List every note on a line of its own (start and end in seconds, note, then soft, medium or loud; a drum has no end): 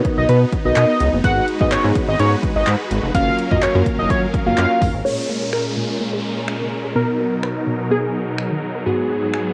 0.00 0.28 B3 medium
0.00 1.22 B3 medium
0.00 0.29 D#4 medium
0.00 3.11 D#4 medium
0.00 0.29 F#4 medium
0.00 0.29 A#4 medium
0.00 0.29 B4 medium
0.05 kick medium
0.05 closed hi-hat medium
0.18 0.25 B1 loud
0.18 0.28 D#5 medium
0.29 0.45 B2 loud
0.29 0.40 B4 medium
0.29 closed hi-hat medium
0.53 kick medium
0.53 closed hi-hat medium
0.65 0.73 B1 medium
0.65 0.94 B3 medium
0.65 0.94 D#4 medium
0.65 0.94 F#4 medium
0.65 0.95 A#4 medium
0.65 0.95 B4 medium
0.65 0.75 D#5 medium
0.76 0.85 B2 loud
0.76 1.11 D#5 medium
0.76 clap loud
0.76 closed hi-hat medium
1.00 1.09 C#2 medium
1.00 closed hi-hat medium
1.13 1.21 F#1 medium
1.24 1.40 G#1 loud
1.24 3.13 G#3 medium
1.24 1.42 B3 medium
1.24 1.42 D#4 medium
1.24 3.13 F#4 medium
1.24 1.42 F#4 medium
1.24 1.42 G#4 medium
1.24 3.13 B4 medium
1.24 1.42 B4 medium
1.24 1.45 F#5 loud
1.24 kick loud
1.24 closed hi-hat loud
1.48 closed hi-hat medium
1.60 1.68 G#2 loud
1.60 1.72 B3 medium
1.60 1.72 D#4 medium
1.60 1.72 F#4 medium
1.60 1.72 G#4 medium
1.60 1.72 B4 medium
1.60 1.71 D#5 medium
1.60 kick loud
1.72 1.77 G#2 soft
1.72 1.83 C#5 medium
1.72 clap loud
1.72 closed hi-hat medium
1.84 1.92 G#2 loud
1.84 2.31 B3 medium
1.84 2.31 D#4 medium
1.84 2.31 F#4 medium
1.84 2.31 G#4 medium
1.84 2.32 C#5 medium
1.95 kick medium
1.95 closed hi-hat medium
2.08 2.16 G#1 loud
2.08 2.18 D#5 medium
2.19 2.36 G#2 loud
2.19 2.31 C#5 loud
2.19 closed hi-hat medium
2.43 kick medium
2.43 closed hi-hat medium
2.56 2.63 G#1 medium
2.56 2.66 D#5 medium
2.67 2.76 G#2 loud
2.67 clap loud
2.67 closed hi-hat medium
2.91 2.99 G#1 loud
2.91 closed hi-hat medium
3.03 3.11 F1 medium
3.14 3.31 F#1 loud
3.14 5.03 F#3 medium
3.14 3.32 A#3 medium
3.14 5.03 C#4 medium
3.14 3.33 C#4 medium
3.14 3.33 F4 medium
3.14 3.33 F#4 medium
3.14 3.33 A#4 medium
3.14 5.03 F5 medium
3.14 3.36 F5 loud
3.14 kick loud
3.14 closed hi-hat loud
3.39 closed hi-hat medium
3.51 3.59 F#2 loud
3.51 3.62 A#3 medium
3.51 3.62 C#4 medium
3.51 3.62 F4 medium
3.51 3.62 F#4 medium
3.51 3.62 A#4 medium
3.51 3.61 D#5 medium
3.51 kick loud
3.62 3.67 F#2 medium
3.62 3.74 C#5 medium
3.62 clap loud
3.62 closed hi-hat medium
3.75 3.83 F#2 loud
3.75 4.09 A#3 medium
3.75 4.09 C#4 medium
3.75 4.10 F4 medium
3.75 4.10 F#4 medium
3.75 4.10 A#4 medium
3.86 kick medium
3.86 closed hi-hat medium
3.99 4.06 F#1 medium
3.99 4.09 D#5 medium
4.10 4.26 F#2 loud
4.10 4.21 C#5 medium
4.10 kick loud
4.10 closed hi-hat medium
4.34 kick medium
4.34 closed hi-hat medium
4.46 4.54 F#1 medium
4.46 4.75 A#3 medium
4.46 4.75 C#4 medium
4.46 4.75 F4 medium
4.46 4.75 F#4 medium
4.46 4.76 A#4 medium
4.46 4.56 F5 medium
4.58 4.66 F#2 loud
4.58 4.92 F5 medium
4.58 clap loud
4.58 closed hi-hat medium
4.82 4.90 F#1 loud
4.82 kick medium
4.82 open hi-hat medium
4.94 5.02 G#1 medium
5.05 6.94 A#2 medium
5.05 5.13 A#2 medium
5.05 6.94 G#3 medium
5.05 6.92 C#4 medium
5.05 6.94 C#4 medium
5.05 6.92 F4 medium
5.05 6.92 G#4 medium
5.05 8.82 A#4 medium
5.05 6.92 A#4 medium
5.05 5.54 C#5 loud
5.05 downlifter medium
5.29 5.36 A#3 medium
5.42 5.48 G#4 medium
5.53 5.60 A#4 medium
5.53 6.92 A#4 medium
5.53 finger snap medium
5.77 5.84 A#2 medium
6.01 6.08 A#3 medium
6.13 6.20 G#4 medium
6.48 finger snap loud
6.61 6.67 C#3 medium
6.85 6.91 G#4 medium
6.95 7.03 B2 medium
6.95 8.84 B2 medium
6.95 9.53 F#3 medium
6.95 8.82 B3 medium
6.95 8.82 D#4 medium
6.95 8.84 D#4 medium
6.95 8.82 F#4 medium
6.95 7.87 A#4 medium
6.95 8.83 A#4 medium
7.19 7.27 B3 medium
7.32 7.39 A#4 medium
7.43 7.51 B4 medium
7.43 finger snap loud
7.67 7.75 B2 medium
7.91 7.98 B3 medium
7.91 8.59 G#4 medium
8.03 8.10 A#4 medium
8.38 finger snap medium
8.51 8.58 D#3 medium
8.75 8.82 A#4 medium
8.86 9.53 G#2 medium
8.86 8.94 G#2 medium
8.86 9.53 B3 medium
8.86 9.53 D#4 medium
8.86 9.53 F#4 medium
8.86 9.53 G#4 medium
9.10 9.17 B3 medium
9.23 9.29 G#4 medium
9.34 9.41 G#5 medium
9.34 finger snap loud